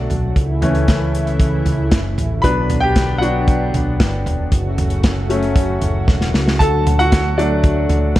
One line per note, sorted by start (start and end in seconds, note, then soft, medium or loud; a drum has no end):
0.00 0.34 D3 medium
0.00 0.34 F#3 medium
0.00 0.39 F#3 soft
0.00 0.34 A3 medium
0.00 0.39 A3 soft
0.00 0.38 D4 medium
0.00 0.34 F#4 medium
0.00 0.38 F#4 medium
0.00 0.38 A4 medium
0.00 0.38 D5 medium
0.00 0.38 F#5 medium
0.00 0.38 A5 medium
0.10 0.34 B1 medium
0.10 closed hi-hat medium
0.10 floor tom medium
0.36 1.62 C#2 loud
0.36 2.43 C#3 medium
0.36 2.43 E3 medium
0.36 2.43 A3 medium
0.36 2.43 E4 medium
0.36 kick medium
0.36 closed hi-hat medium
0.62 2.40 E3 soft
0.62 2.40 A3 soft
0.62 2.40 C#4 medium
0.62 closed hi-hat medium
0.62 floor tom medium
0.75 closed hi-hat soft
0.88 kick loud
0.88 snare medium
0.88 closed hi-hat medium
1.15 closed hi-hat medium
1.27 closed hi-hat soft
1.40 kick medium
1.40 closed hi-hat medium
1.66 1.90 C#2 medium
1.66 closed hi-hat medium
1.66 floor tom medium
1.91 2.16 F#1 medium
1.91 kick medium
1.91 snare loud
1.91 closed hi-hat medium
2.18 2.42 A1 medium
2.18 closed hi-hat medium
2.18 floor tom medium
2.42 3.70 B1 loud
2.42 4.50 D3 medium
2.42 2.78 F#3 soft
2.42 2.78 B3 soft
2.42 4.50 B3 medium
2.42 2.79 D4 medium
2.42 4.50 D4 medium
2.42 2.81 B4 medium
2.42 2.83 B5 medium
2.42 kick medium
2.42 closed hi-hat medium
2.70 closed hi-hat medium
2.70 floor tom medium
2.81 3.20 G4 medium
2.81 3.18 G5 loud
2.96 kick medium
2.96 snare medium
2.96 closed hi-hat medium
3.18 3.45 F#3 soft
3.18 3.45 B3 soft
3.18 3.46 D4 medium
3.18 4.20 F#5 medium
3.23 4.22 F#4 medium
3.23 closed hi-hat medium
3.48 kick loud
3.48 closed hi-hat medium
3.74 3.98 B1 medium
3.74 closed hi-hat medium
3.74 floor tom medium
4.00 4.26 G1 medium
4.00 kick medium
4.00 snare loud
4.00 closed hi-hat medium
4.26 4.50 E1 medium
4.26 closed hi-hat medium
4.26 floor tom medium
4.51 5.78 F#1 loud
4.51 6.58 C#3 medium
4.51 8.20 F#3 medium
4.51 6.57 A3 medium
4.51 8.20 F#4 medium
4.51 kick medium
4.51 closed hi-hat medium
4.78 closed hi-hat medium
4.78 floor tom medium
4.90 closed hi-hat soft
5.04 kick medium
5.04 snare loud
5.04 closed hi-hat medium
5.29 6.56 F#3 soft
5.29 6.56 A3 soft
5.29 6.56 C#4 medium
5.29 closed hi-hat medium
5.43 closed hi-hat soft
5.56 kick loud
5.56 closed hi-hat medium
5.82 6.06 F#1 medium
5.82 closed hi-hat medium
5.82 floor tom medium
6.08 6.32 E1 medium
6.08 kick loud
6.08 snare soft
6.21 snare medium
6.34 6.58 C#2 medium
6.34 snare medium
6.48 snare medium
6.59 7.86 D2 medium
6.59 8.20 D3 medium
6.59 8.20 A3 medium
6.59 6.97 A4 medium
6.59 7.00 A5 medium
6.59 kick medium
6.59 closed hi-hat medium
6.87 closed hi-hat medium
6.87 floor tom medium
6.99 7.36 F#4 medium
6.99 7.39 F#5 loud
6.99 closed hi-hat soft
7.12 kick loud
7.12 snare loud
7.12 closed hi-hat medium
7.38 7.72 F#3 medium
7.38 7.73 A3 medium
7.38 8.20 D4 medium
7.38 8.20 D5 medium
7.38 closed hi-hat medium
7.64 kick loud
7.64 closed hi-hat medium
7.89 8.14 D2 medium
7.89 closed hi-hat medium
7.89 floor tom medium
8.16 kick loud
8.16 snare loud
8.16 closed hi-hat medium